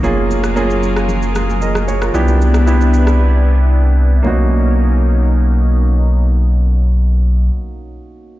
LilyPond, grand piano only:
\new Staff \with { instrumentName = "Grand piano" } { \time 4/4 \key fis \major \tempo 4 = 114 << { r2. <ais' dis''>8 <gis' cis''>16 <eis' ais'>16~ | <eis' ais'>16 r2. r8. | r1 | r1 | } \\ { <ais cis' eis' gis'>4 <ais cis' eis' gis'>4. r4. | <b d' e' g'>4 <b d' e' g'>4. r4. | <ais cis' dis' fis'>1~ | <ais cis' dis' fis'>1 | } >> }